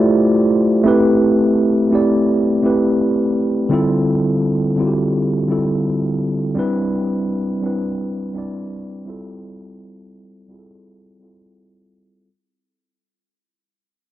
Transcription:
tine electric piano
Already playing: A3 E4 F4 G4 C5 D5
0.84 A3 C4 E4 G4
0.88 B4
1.90 A3 C4 E4 G4
1.95 D5
2.62 A3 C4 E4 G4
2.66 B4
3.69 D3 G3 C4 E4 F4
3.73 A4
4.76 D3 G3 C4 E4 F4
4.80 F#4
4.87 G4
5.48 D3 G3 C4 E4 F4
5.52 A4
6.55 G3 C4 D4 E4
6.59 B4
7.62 G3 C4 D4 E4
7.66 B4
8.33 G3 C4 D4 E4
8.38 D5
9.05 G3 C4 E4 F4
9.10 A4
10.48 G3 C4 E4 F4
10.52 G#4
10.59 A4
11.19 G3 C4 E4 F4
11.24 A4

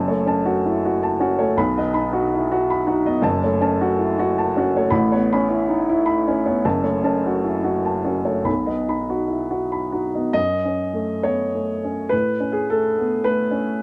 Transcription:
upright piano
Already playing: F#1 F#2 A5
0.08 A3 C#5
0.26 C#4 A5
0.45 F#4
0.66 E4
0.85 F#4
1.03 A5
1.20 C#4 F#4
1.39 A3 C#5
1.57 B1 B2 B5
1.77 B3 D#5
1.93 D#4 B5
2.13 F#4
2.34 E4
2.52 F#4
2.70 B5
2.87 D#4 F#4
3.06 B3 D#5
3.22 F#1 F#2 A5
3.44 A3 C#5
3.61 C#4 A5
3.81 F#4
3.99 E4
4.19 F#4
4.38 A5
4.57 C#4 F#4
4.76 A3 C#5
4.90 A1 A2 B5
5.12 B3 C#5
5.33 C#4 B5
5.49 E4
5.69 D#4
5.89 E4
6.06 B5
6.28 C#4 E4
6.46 B3 C#5
6.65 F#1 F#2 A5
6.83 A3 C#5
7.03 C#4 A5
7.26 F#4
7.44 E4
7.64 F#4
7.85 A5
8.04 C#4 F#4
8.25 A3 C#5
8.44 B1 B2 B5
8.66 B3 D#5
8.88 D#4 B5
9.10 F#4
9.28 E4
9.51 F#4
9.72 B5
9.92 D#4 F#4
10.15 B3 D#5
10.33 F#2 D#5
10.65 C#4
10.93 A3
11.23 B3 C#5
11.55 A3
11.84 C#4
12.09 A2 B4
12.40 C#4
12.52 G#4
12.70 A3 A4
12.98 B3
13.24 A3 B4
13.51 C#4

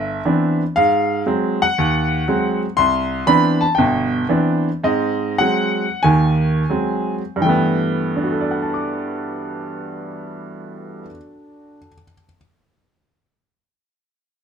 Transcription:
grand piano
Already playing: G1 E5
0.25 E3 B3 C4 D4
0.76 G#2 F5
1.26 F#3 G#3 C4
1.62 F#5
1.78 D#2
2.28 F#3 G#3 C4
2.77 C2 C6
3.27 E3 B3 C4 D4 B5
3.61 A5
3.75 G1 B2 G5
4.29 E3 B3 C4 D4
4.83 G#2 C4 D#5
5.38 F#3 G#3 C4 F#5
6.03 D#2 D#3 G#5
6.70 F#3 G#3 C4
7.36 G2
7.40 E3 G5
7.44 A3
7.49 B3
8.16 D4
8.24 F#4
8.32 A4
8.41 D5
8.51 F#5
8.62 A5
8.74 D6

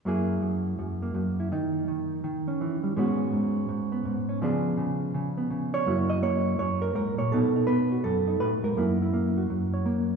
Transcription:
hollow-body jazz guitar
0.05 F#2 F#3 A#3 E4 G#4
0.42 F#2
0.79 F#2
1.02 A#3
1.14 F#2
1.40 E4
1.52 D#3 D#4
1.88 D#3
2.24 D#3
2.48 C#4
2.61 E3
2.83 G3
2.96 G#2 G#3 B3 C#4 F#4
3.33 G#2
3.69 G#2
3.92 B3
4.05 G#2
4.29 C#4
4.41 C#3 F3 B3 D4 G#4
4.77 C#3
5.14 C#3
5.38 B3
5.50 C#3
5.73 D4 C#5
5.86 F#2 A#3 E4 F#4
6.10 D#5
6.22 A#3 C#5
6.59 F#2 C#5
6.82 A#4
6.95 G#2 A#4
7.18 A#2 C#5
7.32 B2 B3 D#4 A4
7.56 D#4
7.67 B3 B4
7.92 F#4
8.04 F#2 A4
8.27 D#4
8.40 A2 B4
8.63 G#2 A#4
8.77 F#2 A#3 E4
9.02 E4
9.13 A#3
9.37 F#4
9.50 F#2
9.74 C#5
9.86 A#3

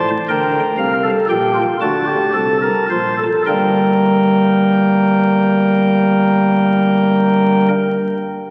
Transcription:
pipe organ
0.28 D2 D3 A#4 G5
0.78 C2 C3 F5
1.04 A4
1.29 A#1 A#2 G4 G5
1.55 F4
1.81 D2 D3 F#4 A5
2.07 G4
2.34 C2 C3 A4
2.62 A#4
2.90 A#1 A#2 C5
3.18 A4
3.46 G1 G2 G3 A#3 A#4 G5

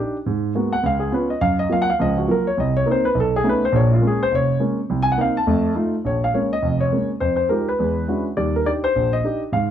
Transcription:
grand piano
Already playing: D4 D#4
0.00 G4
0.26 G#2
0.55 G#3 A#3 B3 F#4
0.73 F#5
0.83 C#2 F5
1.00 G#4
1.12 B3 C#4 F4 B4
1.30 D#5
1.41 F#2 F5
1.59 D#5
1.70 F#3 A#3 F4 F5
1.82 F#5
1.90 F5
1.99 C#2 F3 D#5
2.18 F#4
2.28 F#3 A#3 F4 A#4
2.47 C#5
2.57 C2 D#5
2.77 C#5
2.86 A#3 C4 D#4
2.91 C5
3.05 B4
3.15 B1
3.20 A4
3.36 G#4
3.44 A3 B3 C#4 D#4
3.49 B4
3.65 C5
3.72 A#1 A#2 C#5
3.94 F4
4.01 G#3 A#3 C#4
4.07 G#4
4.23 C5
4.31 F1 C#5
4.60 G#3 A#3 C#4
4.90 C2
5.03 G#5
5.12 F#5
5.18 A#3 C4 D#4 F5
5.37 A5
5.47 F2 A3
5.75 A3 D#4 F4
6.05 A#1 C#5
6.24 F5
6.34 G#3 A#3 C#4 C#5
6.53 D#5
6.62 F1 F2
6.80 C#5
6.92 G#3 A#3 C#4
7.20 F2 C5
7.36 C5
7.49 G#3 D#4 F4 G4 A#4
7.69 B4
7.79 E2 G#3
8.08 G#3 C#4 D4 E4 F#4
8.37 D#2 G3 D5
8.56 A#4
8.65 D4 D#4 G4 D5
8.84 C5
8.96 A#1
9.13 D#5
9.24 D4 D#4 G4
9.52 G#2 F5

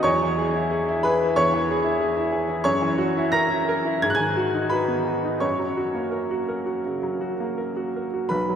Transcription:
grand piano
0.03 E2 C#5 C#6
0.23 E3
0.38 G#4
0.55 E4
0.71 G#4
0.89 E4
1.03 G#4 B4 B5
1.23 E4
1.36 E2 C#5 C#6
1.54 E3
1.71 G#4
1.84 E4
2.00 G#4
2.17 E4
2.32 G#4
2.49 E4
2.64 F#2 C#5 C#6
2.82 E3
2.98 F#4
3.17 E4
3.32 A#4 A#5 A#6
3.50 E4
3.69 A#4
3.85 E4
4.02 G#2 G#6
4.10 F#6
4.15 G#5 G#6
4.19 D#3
4.37 F#4
4.54 D#4
4.70 F#4 B4 B5
4.88 B3
5.07 F#4
5.25 D#4
5.40 F#2 C#5 C#6
5.59 F#3
5.77 F#4
5.94 A#3
6.11 A#4
6.31 F#4
6.49 A#4
6.66 F#4
6.86 C#3
7.03 F#3
7.21 F#4
7.40 A#3
7.58 A#4
7.77 F#4
7.96 A#4
8.14 F#4
8.29 B1 B4 B5
8.49 F#3

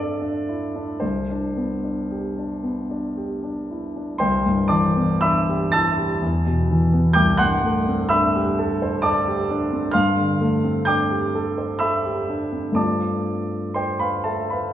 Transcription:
grand piano
Already playing: G2 C4 D4 A4 D5 E5 F5
0.21 D4
0.49 E4
0.76 D4
1.00 C2 C5
1.31 D4
1.57 B3
1.84 D4
2.11 G4
2.38 D4
2.63 B3
2.90 D4
3.17 G4
3.43 D4
3.71 E4
3.96 D4
4.18 C2 C5 G5 C6
4.46 G2
4.68 E3 D5 A5 D6
4.96 B3
5.21 D4 E5 B5 E6
5.49 G4
5.72 E4 A5 E6 A6
5.98 G4
6.22 E2
6.46 B2
6.71 E3
6.93 B3
7.13 C2 G5 D6 G6
7.37 G2 F#5 C6 F#6
7.63 A3
7.88 C4
8.09 D4 E5 B5 E6
8.35 G4
8.59 A4
8.82 C5
9.02 A4 D5 A5 D6
9.27 G4
9.51 D4
9.72 C4
9.91 G2 F5 C6 F6
10.17 D3
10.41 A3
10.64 C4
10.85 D4 G5 D6 G6
11.11 G4
11.35 A4
11.58 C5
11.79 A4 E5 B5 E6
12.06 G4
12.29 D4
12.52 C4
12.72 G2 A3 C4 D4 D6
12.76 F4 D5 A5
13.74 C5 G5 C6
13.99 B4 F5 B5
14.24 A4 E5 A5
14.50 B4 F5 B5

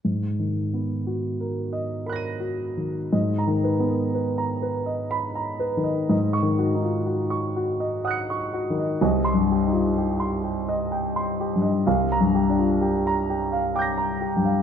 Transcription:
grand piano
0.05 G#2
0.39 D#3
0.74 B3
1.07 F#4
1.41 A#4
1.73 D#5
2.06 A#4 B5 F#6
2.13 A#6 D#7
2.40 F#4
2.77 D#3
3.12 G#2 D#5
3.38 A#5
3.47 D#3
3.64 B4
3.80 B3
3.88 A#4
4.14 B4
4.38 A#5
4.62 B4
4.86 D#5
5.11 B5
5.35 A#5
5.60 B4
5.77 D#3
5.84 D#5
6.09 G#2 D#5
6.33 C#6
6.43 D#3
6.59 F#4
6.75 D#4
6.83 F4
7.06 F#4
7.30 C#6
7.56 F#4
7.80 D#5
8.05 F#5 D#6 F#6
8.11 C#7
8.30 C#6
8.54 F#4
8.70 D#3
8.79 D#5
9.01 C2 D#5
9.25 C6
9.34 G2
9.51 G4
9.67 D#4
9.72 F4
9.98 G4
10.20 C6
10.44 G4
10.69 D#5
10.92 G5
11.16 C6
11.40 G4
11.56 G2
11.62 D#5
11.86 C2 F5
12.12 A#5
12.21 G2
12.34 G4
12.50 D4
12.59 F4
12.81 G4
13.07 A#5
13.30 G4
13.52 F5
13.75 G5 D6 G6
13.82 A#6
13.98 A#5
14.21 G4
14.37 G2
14.45 F5

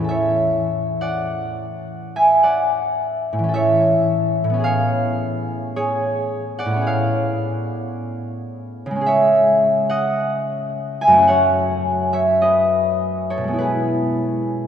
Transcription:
harp
Already playing: E2 A2 E3 B3 E4 G#4
0.00 C#4 A4
0.09 C#5 E5
1.01 D5 F#5
2.16 E5 G#5
2.43 D5 F#5
3.33 A2
3.39 E3
3.44 C#4
3.49 A4
3.54 C#5 E5
4.44 A2
4.50 B3
4.54 C#4
4.60 G#4
4.64 C#5 F5
5.76 G#4 C#5
6.59 D5 F#5
6.66 A2
6.71 B3
6.76 C#4
6.81 G#4
6.86 C#5 F5
8.86 C#3
8.91 G#3
8.96 C#4
9.01 G#4
9.06 C#5 E5
9.90 D#5 F#5
11.01 E5 G#5
11.08 F#2
11.12 A3
11.18 C#4
11.22 F#4
11.28 C#5 F#5
12.13 C#5 E5
12.42 B4 D#5
13.30 A4 C#5
13.38 B2
13.44 G#3
13.48 B3
13.53 E4
13.58 G#4 B4

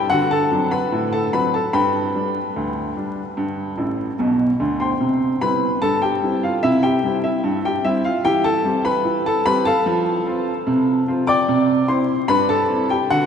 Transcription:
upright piano
Already playing: G4 G5
0.10 D3 F#4 F#5
0.31 A4 A5
0.51 F#3 C4 D4
0.71 B4 B5
0.92 A2
1.13 A4 A5
1.33 F#3 C4 D4 B4 B5
1.54 A4 A5
1.73 G2 B4 G5 B5
2.15 G3 D4
2.56 D2
2.97 G3 D4
3.37 G2
3.77 A1 A2
4.19 B1 B2
4.60 D2 D3
4.80 C5 G5 C6
5.00 C3
5.41 G3 C4 E4 B4 B5
5.82 G2 A4 A5
6.02 G4 G5
6.23 G3 C4 E4
6.43 F4 F5
6.63 C3 E4 E5
6.83 G4 G5
7.04 G3 C4 E4
7.24 E4 E5
7.44 G2
7.65 G4 G5
7.84 G3 C4 E4 E5
8.05 F4 F5
8.25 E3 G4 G5
8.44 A4 A5
8.64 G3 C4 G4
8.85 B4 B5
9.05 E3
9.26 A4 A5
9.46 G3 C4 G4 B4 B5
9.65 A4 F5 A5
9.86 F3
10.27 C4 F4
10.67 C3
11.08 C4 F4
11.27 D5 G5 D6
11.48 C3
11.88 C4 E4 C5 C6
12.28 G2 B4 B5
12.49 A4 A5
12.70 C4 E4
12.90 G4 G5
13.10 D3 F#4 F#5

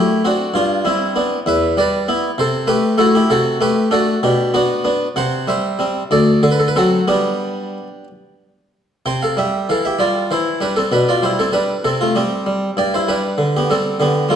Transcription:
harpsichord
Already playing: A3 E4 G4
0.25 C4 D4 F#4
0.54 G2 D4 F4
0.85 G3 C4 E4
1.16 B3 D4
1.46 E2 B4 E5
1.77 G3 B4 D5
2.08 B3 E4
2.38 C3 A4 C5
2.67 A3 G4 B4
2.98 A3 E4 F#4 A4
3.15 E4 G4
3.30 C3 F#4 A4
3.61 A3 G4 B4
3.91 A3 D4 F#4 A4
4.23 B2 D4 G4
4.54 B3 D4 F#4
4.84 B3 D4
5.16 C3 C5 F#5
5.47 G3 C5 E5
5.79 G3 C4
6.11 D2 A4 D5
6.43 D3 A4
6.51 B4
6.59 A4
6.68 B4
6.76 F#3 C4 F#4 A4
7.08 G3 B3 D4 G4
9.06 C3 C5 G5
9.22 A4 F5
9.37 G3 G4 E5
9.69 E3 A4 F5
9.85 G4 E5
9.99 G3 F4 D5
10.31 E3 E4 C5
10.61 G3 D4 B4
10.76 C4 A4
10.92 B2 D4 B4
11.09 F4 D5
11.23 G3 E4 C5
11.39 C4 A4
11.52 G3 D4 B4
11.84 C3 C4 A4
12.01 A3 F4
12.15 G3 C4 G4
12.46 G3
12.77 G2 G4 D5
12.94 E4 C5
13.08 G3 D4 B4
13.38 D3
13.57 B3 G4
13.70 G3 C4 A4
14.00 D3 B3 G4
14.29 G3 A3 F4

